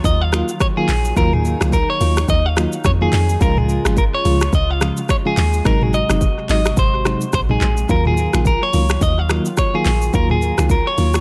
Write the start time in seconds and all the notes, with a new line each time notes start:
Already playing: D#3 F#3 F4
0.04 D#2 D#5, kick, shaker
0.22 F5
0.32 D#3 F#3 A#3 F4, finger snap, cross-stick, shaker
0.49 shaker
0.60 C#5, finger snap, kick, cross-stick, shaker
0.76 D#3 F#3 A#3 F4 G#4
0.88 A#1, clap, open hi-hat, shaker
1.05 shaker
1.16 D#2 D#3 F#3 A#3 D#4 F4 A#4, kick, shaker
1.33 G#4, mid tom
1.45 shaker
1.60 C#2 D#3 F#3 A#3 F4, finger snap, cross-stick, shaker
1.72 A#4, kick, shaker
1.90 C#5
2.00 D#2 D#3 F#3 A#3 F4, open hi-hat, shaker
2.17 finger snap, cross-stick, shaker
2.28 D#2 D#5, kick, shaker
2.46 F5
2.56 D#3 F#3 A#3 F4, finger snap, cross-stick, shaker
2.73 shaker
2.84 F2 C#5, finger snap, kick, cross-stick, shaker
3.01 D#3 F#3 A#3 F4 G#4
3.13 F2, clap, open hi-hat, shaker
3.29 shaker
3.40 C#2 C#3 F3 G#3 F4 A#4, kick, shaker
3.57 G#4, mid tom
3.69 shaker
3.85 G#1 C#3 F3 G#3 F4, finger snap, cross-stick, shaker
3.97 A#4, kick, shaker
4.14 C#5
4.25 C#2 C#3 F3 G#3 F4, open hi-hat, shaker
4.41 finger snap, cross-stick, shaker
4.53 C#2 D#5, kick, shaker
4.71 F5
4.81 C#3 F3 G#3 F4, finger snap, cross-stick, shaker
4.97 shaker
5.09 C#5, finger snap, kick, cross-stick, shaker
5.25 C#3 F3 G#3 F4 G#4
5.37 D#2, clap, open hi-hat, shaker
5.53 shaker
5.65 G#1 C3 F#3 G#3 D#4 F#4 A#4, finger snap, kick, cross-stick, shaker
5.81 G#4, mid tom
5.93 D#5, shaker
6.09 F#1 C3 F#3 G#3 D#4, finger snap, cross-stick, shaker
6.21 kick, shaker
6.49 G#1 C3 F#3 G#3 D#4 D#5, clap, open hi-hat, shaker
6.65 finger snap, cross-stick, shaker
6.77 G#1 C5, kick, shaker
7.05 C3 F#3 G#3 D#4, finger snap, cross-stick, shaker
7.21 shaker
7.33 A#1 C5, finger snap, kick, cross-stick, shaker
7.49 C3 F#3 G#3 D#4 G#4, mid tom
7.61 A#1, clap, shaker
7.77 shaker
7.89 D#2 D#3 F#3 A#3 F4 A#4, kick, shaker
8.05 G#4, mid tom
8.17 shaker
8.33 A#1 D#3 F#3 A#3 F4, finger snap, cross-stick, shaker
8.45 A#4, kick, shaker
8.63 C#5
8.73 C#2 D#3 F#3 A#3 F4, open hi-hat, shaker
8.89 finger snap, cross-stick, shaker
9.01 D#2 D#5, kick, shaker
9.19 F5
9.29 D#3 F#3 A#3 F4, finger snap, cross-stick, shaker
9.45 shaker
9.57 C#5, finger snap, kick, cross-stick, shaker
9.73 D#3 F#3 A#3 F4 G#4
9.85 A#1, clap, open hi-hat, shaker
10.02 shaker
10.13 D#2 D#3 F#3 A#3 F4 A#4, kick, shaker
10.30 G#4, mid tom
10.42 shaker
10.58 C#2 D#3 F#3 A#3 F4, finger snap, cross-stick, shaker
10.69 A#4, kick, shaker
10.87 C#5
10.98 D#2 D#3 F#3 A#3 F4, open hi-hat, shaker
11.14 finger snap, cross-stick, shaker